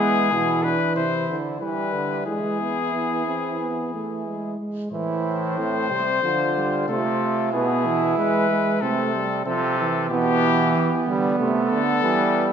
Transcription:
Already playing: E3 G#3 B3 G#4
0.32 B2 E3 E4
0.63 D4 B4
0.96 C3 E4 C5
1.29 D3
1.59 E3 G3 E4 B4
1.94 D3
2.26 E3 G#3 E4 G#4
2.61 B3
2.93 B3
3.26 C4
3.60 B3
3.94 A3
4.26 G#3
4.59 G#3
4.92 A2 E3 E4 C5
5.57 A3 C4
5.90 C3 G3
6.22 D3 F3 F4
6.56 G3
6.88 C3 A3 F4 A4
7.52 B2 B3 E4 G#4
7.86 E3
8.17 E3 G#3 B4
8.50 G#3
8.81 C3 A3 C4 A4
9.15 G3
9.45 C3 F3 C4 A4
9.79 E3
10.09 B2 E3 B3 G4
10.74 E3 B3
11.07 D3 G3
11.39 C3 A3 A4
11.71 D3
12.03 E3 G3

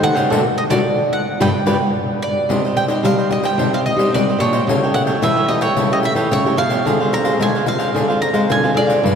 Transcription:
Already playing: D#3 A3 D#4 G4 C5
0.03 A4 C5 D#5 F#5 G5, pandeiro
0.14 C#3 C5 D#5 G5, pandeiro
0.30 D3 A3 D4 F#4 A4 D5, pandeiro
0.58 D#5
0.70 D3 A3 D4 F#4 A4 D5, pandeiro
1.13 F#5
1.40 G2 D4 F4 G4 B4 D5 G5, pandeiro
1.66 G2 D4 F4 G4 B4 D5, pandeiro
2.22 D5
2.49 C3 C4 D4 D#4 G4 C5 D5 D#5, pandeiro
2.65 G4 C5 D#5, pandeiro
2.76 G5, pandeiro
2.88 D#4 G4 C5 D5 D#5, pandeiro
3.03 G3 D4 G4 C5 D#5 F5, pandeiro
3.18 G4 C5 D#5, pandeiro
3.29 D#4 G4 D5 D#5, muted cavaquinho stroke, pandeiro
3.43 G4 C5 D#5 G5, pandeiro
3.57 C3 C4 D4 D#4 G4 C5 D5 D#5, pandeiro
3.73 G4 C5 D#5 F5, pandeiro
3.85 D#5, muted cavaquinho stroke, pandeiro
3.96 G3 D#4 G4 C5 D5 D#5, pandeiro
4.12 G3 C4 D5, pandeiro
4.29 G4 C5 D#5, pandeiro
4.38 A#2 D4 D#4 G4 C5 C#5 D5, pandeiro
4.43 D#5
4.53 G4 C5 D#5, pandeiro
4.67 C#3 A3 E4 G4 A4 C#5 G5, pandeiro
4.83 A4 C#5 G5, pandeiro
4.93 A3 E4 G4 F#5, pandeiro
5.07 A4 C#5 G5, pandeiro
5.21 C#3 E3 E4 A4 C#5 E5 G5, pandeiro
5.37 A4 C#5 G5, pandeiro
5.48 A3 E4 G4 D#5, muted cavaquinho stroke, pandeiro
5.61 A4 C#5 G5, pandeiro
5.76 C#3 E4 A4 C#5 G5, pandeiro
5.90 A3 E4 G4 C#5 D#5 G5, pandeiro
5.95 A4
6.03 E5, muted cavaquinho stroke, pandeiro
6.15 E3 A4 C#5 G5, pandeiro
6.30 C#3 C#5, pandeiro
6.45 A3 E4 G4 A4 C#5 G5, pandeiro
6.57 B2 A3 E4 G4 A4 C#5 F5 G5, pandeiro
6.70 A4 C#5 G5, pandeiro
6.85 D3 C4 D4 F4 G#4 C5 F5, pandeiro
7.00 G#4 C5 F5, pandeiro
7.11 C4 F4 G#4 A#5, pandeiro
7.24 G#4 C5 F5, pandeiro
7.39 D3 G#3 D4 G#4 C5 F5 G#5, pandeiro
7.55 G#4 C5 F5, pandeiro
7.66 C4 F4 G#4 F5, muted cavaquinho stroke, pandeiro
7.78 G#4 C5 F5, pandeiro
7.94 D3 D4 G#4 C5 F5, pandeiro
8.08 C4 F4 G#4 C5 F5, pandeiro
8.21 A#5, muted cavaquinho stroke, pandeiro
8.33 G#3 G#4 C5 F5, pandeiro
8.49 D3 G#5, pandeiro
8.64 C4 F4 G#4 C5 F5, pandeiro
8.74 D3 C4 D4 F4 G#4 C5 D5 F5, pandeiro
8.87 G#4 C5 F5, pandeiro
9.03 G2 G3 D4 F4 G4 B4 F5, pandeiro

